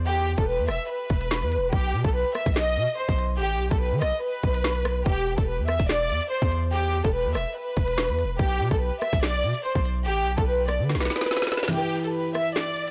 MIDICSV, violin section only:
0, 0, Header, 1, 2, 480
1, 0, Start_track
1, 0, Key_signature, 1, "minor"
1, 0, Tempo, 416667
1, 69, Time_signature, 4, 2, 24, 8
1, 14871, End_track
2, 0, Start_track
2, 0, Title_t, "Violin section"
2, 0, Program_c, 0, 48
2, 67, Note_on_c, 0, 67, 109
2, 413, Note_off_c, 0, 67, 0
2, 443, Note_on_c, 0, 69, 69
2, 533, Note_off_c, 0, 69, 0
2, 546, Note_on_c, 0, 71, 85
2, 744, Note_off_c, 0, 71, 0
2, 794, Note_on_c, 0, 76, 77
2, 989, Note_off_c, 0, 76, 0
2, 1034, Note_on_c, 0, 71, 86
2, 1945, Note_off_c, 0, 71, 0
2, 1988, Note_on_c, 0, 67, 93
2, 2333, Note_off_c, 0, 67, 0
2, 2359, Note_on_c, 0, 69, 71
2, 2450, Note_off_c, 0, 69, 0
2, 2467, Note_on_c, 0, 71, 82
2, 2665, Note_off_c, 0, 71, 0
2, 2708, Note_on_c, 0, 76, 81
2, 2905, Note_off_c, 0, 76, 0
2, 2954, Note_on_c, 0, 75, 95
2, 3403, Note_off_c, 0, 75, 0
2, 3424, Note_on_c, 0, 72, 85
2, 3623, Note_off_c, 0, 72, 0
2, 3903, Note_on_c, 0, 67, 108
2, 4251, Note_off_c, 0, 67, 0
2, 4279, Note_on_c, 0, 69, 71
2, 4370, Note_off_c, 0, 69, 0
2, 4390, Note_on_c, 0, 71, 86
2, 4586, Note_off_c, 0, 71, 0
2, 4630, Note_on_c, 0, 75, 74
2, 4826, Note_off_c, 0, 75, 0
2, 4864, Note_on_c, 0, 71, 91
2, 5780, Note_off_c, 0, 71, 0
2, 5826, Note_on_c, 0, 67, 96
2, 6172, Note_off_c, 0, 67, 0
2, 6194, Note_on_c, 0, 69, 68
2, 6288, Note_off_c, 0, 69, 0
2, 6299, Note_on_c, 0, 71, 77
2, 6500, Note_off_c, 0, 71, 0
2, 6543, Note_on_c, 0, 76, 83
2, 6743, Note_off_c, 0, 76, 0
2, 6794, Note_on_c, 0, 74, 94
2, 7243, Note_off_c, 0, 74, 0
2, 7261, Note_on_c, 0, 72, 81
2, 7461, Note_off_c, 0, 72, 0
2, 7748, Note_on_c, 0, 67, 107
2, 8093, Note_off_c, 0, 67, 0
2, 8112, Note_on_c, 0, 69, 71
2, 8206, Note_off_c, 0, 69, 0
2, 8226, Note_on_c, 0, 71, 96
2, 8424, Note_off_c, 0, 71, 0
2, 8474, Note_on_c, 0, 76, 71
2, 8669, Note_off_c, 0, 76, 0
2, 8713, Note_on_c, 0, 71, 90
2, 9625, Note_off_c, 0, 71, 0
2, 9672, Note_on_c, 0, 67, 100
2, 10015, Note_off_c, 0, 67, 0
2, 10036, Note_on_c, 0, 69, 70
2, 10128, Note_off_c, 0, 69, 0
2, 10143, Note_on_c, 0, 71, 74
2, 10343, Note_off_c, 0, 71, 0
2, 10384, Note_on_c, 0, 76, 82
2, 10583, Note_off_c, 0, 76, 0
2, 10632, Note_on_c, 0, 74, 100
2, 11082, Note_off_c, 0, 74, 0
2, 11107, Note_on_c, 0, 72, 82
2, 11305, Note_off_c, 0, 72, 0
2, 11589, Note_on_c, 0, 67, 108
2, 11934, Note_off_c, 0, 67, 0
2, 11962, Note_on_c, 0, 69, 74
2, 12052, Note_off_c, 0, 69, 0
2, 12070, Note_on_c, 0, 71, 95
2, 12266, Note_off_c, 0, 71, 0
2, 12307, Note_on_c, 0, 74, 73
2, 12505, Note_off_c, 0, 74, 0
2, 12550, Note_on_c, 0, 71, 91
2, 13463, Note_off_c, 0, 71, 0
2, 13509, Note_on_c, 0, 67, 103
2, 13854, Note_off_c, 0, 67, 0
2, 13877, Note_on_c, 0, 69, 68
2, 13969, Note_off_c, 0, 69, 0
2, 13990, Note_on_c, 0, 71, 77
2, 14186, Note_off_c, 0, 71, 0
2, 14232, Note_on_c, 0, 76, 85
2, 14427, Note_off_c, 0, 76, 0
2, 14466, Note_on_c, 0, 74, 89
2, 14871, Note_off_c, 0, 74, 0
2, 14871, End_track
0, 0, End_of_file